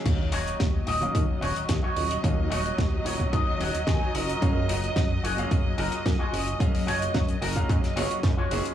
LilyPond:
<<
  \new Staff \with { instrumentName = "Clean electric guitar" } { \time 4/4 \key ees \minor \tempo 4 = 110 << { r1 | r4. des''8 ees''8 ges''8 aes''8 bes''8 | r1 | r1 | } \\ { r8 <ees' ges' des''>8 r8 <ees' ges' ees''>8 r8 <ees' ges' des''>8 r16 <ees' ges' des''>8. | r8 <ees' ges' des''>8 r8 <ees' ges' des''>8 r8 <ees' ges' des''>8 r16 <ees' ges' des''>16 <f' ges' bes'>8~ | <f' ges' bes'>16 r16 <f' ges' bes'>8 r8 <f' ges' aes'>8 r8 <f' ges' bes'>8 r16 <f' ges' aes'>8. | r8 <f' ges' des''>8 r8 <f' ges' bes'>8 r8 <f' ges' des''>8 r16 <f' ges' des''>8. | } >> }
  \new Staff \with { instrumentName = "String section" } { \time 4/4 \key ees \minor <ges ees''>1~ | <ges ees''>1~ | <ges ees''>1~ | <ges ees''>1 | }
  \new Staff \with { instrumentName = "Grand piano" } { \time 4/4 \key ees \minor <ees ges bes des' f''>4.~ <ees ges bes des' f''>16 <ees ges bes des' f''>2~ <ees ges bes des' f''>16 | <ees ges bes des' f''>4.~ <ees ges bes des' f''>16 <ees ges bes des'>4.~ <ees ges bes des'>16 r8 | <ges aes bes des' f''>4.~ <ges aes bes des' f''>16 <ges aes bes des' f''>2~ <ges aes bes des' f''>16 | <ges aes bes des' f''>4.~ <ges aes bes des' f''>16 <ges aes bes des' f''>8. <ges aes bes des' f''>4 <ges aes bes des' aes'>8 | }
  \new Staff \with { instrumentName = "Analog synth bass" } { \clef bass \time 4/4 \key ees \minor ees,8 ees,,8 ees,8 ees,,8 ees,16 r16 ees,,16 ees,16 ees,16 r16 ees,,8 | ees,8 ees,,8 ees,8 ees,,8 ees,16 r16 ees,,16 ees,16 ees,16 r16 ges,,8 | ges,8 ges,,8 ges,8 ges,,8 ges,16 r16 ges,,16 ges,16 ges,16 r16 ges,,8 | ges,8 ges,,8 ges,8 ges,,8 ges,16 r16 ges,,16 ges,16 ges,16 r16 ges,,16 r16 | }
  \new DrumStaff \with { instrumentName = "Drums" } \drummode { \time 4/4 <cymc hh bd>8 hho16 hh16 <hh bd sn>8 hho16 hh16 <hh bd>8 hho16 hh16 <hh bd sn>8 hho16 hh16 | <hh bd>8 hho16 hh16 <hh bd sn>8 hho16 <hh bd>16 <hh bd>8 hho16 hh16 <hh bd sn>8 hho16 hh16 | <hh bd>8 hho16 hh16 <hh bd sn>8 hho16 hh16 <hh bd>8 hho16 hh16 <hh bd sn>8 hho16 hh16 | <hh bd>16 hho16 hho16 hh16 <hh bd sn>16 hh16 hho16 <hh bd>16 <hh bd>16 <hh sn>16 hho16 hh16 <hh bd sn>8 hho16 hh16 | }
>>